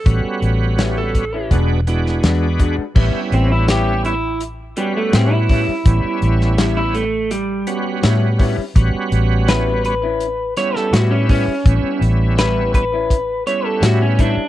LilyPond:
<<
  \new Staff \with { instrumentName = "Electric slide guitar" } { \time 4/4 \key a \mixolydian \tempo 4 = 83 a'4~ a'16 a'8. r8 e'8 r4 | r1 | r1 | r1 |
r1 | }
  \new Staff \with { instrumentName = "Clean electric guitar" } { \time 4/4 \key a \mixolydian r1 | r8 c'16 e'16 g'8 e'8 r8 g16 a16 c'16 e'8.~ | e'4~ e'16 e'16 a8 g4 r4 | r4 b'8 b'4 cis''16 a'16 fis'16 cis'16 cis'8~ |
cis'8 r8 b'8 b'4 cis''16 a'16 fis'16 cis'16 d'8 | }
  \new Staff \with { instrumentName = "Clean electric guitar" } { \time 4/4 \key a \mixolydian r4 <g cis' e' b'>16 r8 <cis' e' b'>16 <gis d' fis' b'>16 r8. <gis d' fis' b'>16 r16 <gis d' fis' b'>16 r16 | <g cis' e' b'>16 r8. <g cis' e' b'>16 r4. r16 <g cis' e' b'>16 r16 <g cis' e' b'>16 r16 | r4 <g cis' e' b'>16 r4. r16 <g cis' e' b'>16 r16 <g cis' e' b'>16 r16 | r4 <g cis' e' b'>16 r8 <cis' e' b'>16 r4 <g cis' e' b'>16 r16 <g cis' e' b'>16 r16 |
r4 <g cis' e' b'>16 r8 <cis' e' b'>16 r4 <g cis' e' b'>16 r16 <g cis' e' b'>16 r16 | }
  \new Staff \with { instrumentName = "Tonewheel organ" } { \time 4/4 \key a \mixolydian <g b cis' fis'>4. r8 <gis b d' fis'>8 <gis b d' fis'>4~ <gis b d' fis'>16 r16 | <g b cis' e'>4. r4 <g b cis' fis'>4~ <g b cis' fis'>16 r16 | <g b cis' e'>4. r4 <g b cis' fis'>4~ <g b cis' fis'>16 r16 | <g b cis' fis'>4. r4 <g b cis' e'>4~ <g b cis' e'>16 r16 |
<g b cis' e'>4. r4 <g b cis' e'>4~ <g b cis' e'>16 r16 | }
  \new Staff \with { instrumentName = "Fingered electric bass" } { \clef bass \time 4/4 \key a \mixolydian a,,16 r16 a,,4. e,,4 e,8. r16 | a,,16 r16 a,,2 r8 a,8. r16 | a,,16 r16 a,,2 r8 a,8. r16 | a,,16 r16 a,,2 r8 a,8. r16 |
a,,16 r16 a,,2 r8 a,8. r16 | }
  \new DrumStaff \with { instrumentName = "Drums" } \drummode { \time 4/4 <hh bd>8 hh8 <hh sn>8 <hh bd>8 <hh bd>8 hh16 sn16 <hh sn>8 <hh bd>8 | <cymc bd>8 hh8 <hh sn>8 hh8 hh8 hh8 <hh sn>8 <hho bd>8 | <hh bd>8 hh16 sn16 <hh sn>8 hh8 hh8 hh8 <hh sn>8 <hho bd>8 | <hh bd>8 hh8 <hh sn>8 hh8 hh8 <hh sn>16 sn16 <hh sn>8 <hho bd>8 |
<hh bd>8 hh8 <hh sn>8 <hh bd>8 <hh bd>8 hh8 <hh sn>8 <hh bd>8 | }
>>